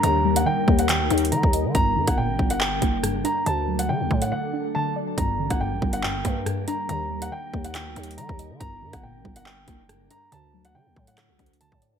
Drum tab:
HH |x--------x-----------x--x-----x-x-x-x-----x-----|x--------x-----------x--------x-----x-----x-----|x--------x-----------x--------------------------|x--------x-----------x--------x-----x-----x-----|
CP |------------------------x-----------------------|------------------------x-----------------------|------------------------------------------------|------------------------x-----------------------|
SD |------------------------------------------------|---------r--------------------------r-----------|------------------------------------------------|---------r--------------------------r-----------|
BD |------------------o--------------------o--------|o--------o--------o-----------o-----------------|------------------o-----------------------------|o--------o--------o-----------o-----------------|

HH |x--------x-----------x--x-----x-x-x-x-----x-----|x--------x-----------x--------x-----x-----x-----|x--------x-----------x--x-----x-x-x-x-----x-----|
CP |------------------------x-----------------------|------------------------x-----------------------|------------------------x-----------------------|
SD |------------------------------------------------|---------r--------------------------r-----------|------------------------r-----------------------|
BD |------------------o--------------------o--------|o--------o--------o-----------o-----------------|------------------o-----------o--------o--------|